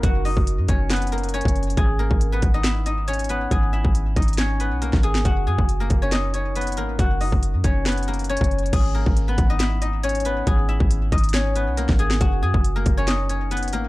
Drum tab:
CC |------------------------------------------------------------------------------------------------|------------------------------------------------------------------------------------------------|------------------------------------------------------------------------------------------------|------------------------------------------------------------------------------------------------|
HH |x-----------o-----------x-----------x-----------x--x--x--x--x--x--x--x--x---x---x---x---x---x---|x-----------------------x-----------x-----------x-----------x-----------x--x--x--x--x-----------|x-----------------------x-----------x--x--x--x--x-----------x-----------x-----------x-----------|x-----------------------x-----------x-----------x-----------x-----------x--x--x--x--x-----------|
SD |------------------------------------------------o-----------------------------------------------|------------------------------------------------o-----------------------------------------------|------------------------------------------------o-----------------------------o-----------o-----|------------------------------------------------o-----------------------------------------------|
BD |o-----------------o-----------------o-----------------------------------------o-----------------|o-----------------o-----------------o-----------------------------------------------------------|o-----------------o-----------------o-----------------------------------------o-----------------|o-----------------o-----------------o-----------------------------------------------------------|

CC |------------------------------------------------------------------------------------------------|x-----------------------------------------------------------------------------------------------|------------------------------------------------------------------------------------------------|------------------------------------------------------------------------------------------------|
HH |x-----------o-----------x-----------x-----------x--x--x--x--x--x--x--x--x---x---x---x---x---x---|x-----------------------x-----------x-----------x-----------x-----------x--x--x--x--x-----------|x-----------------------x-----------x--x--x--x--x-----------x-----------x-----------x-----------|x-----------------------x-----------x-----------x-----------x-----------x--x--x--x--x-----------|
SD |------------------------------------------------o-----------------------------------------------|------------------------------------------------o-----------------------------------------------|------------------------------------------------o-----------------------------o-----------o-----|------------------------------------------------o-----------------------------------------------|
BD |o-----------------o-----------------o-----------------------------------------o-----------------|o-----------------o-----------------o-----------------------------------------------------------|o-----------------o-----------------o-----------------------------------------o-----------------|o-----------------o-----------------o-----------------------------------------------------------|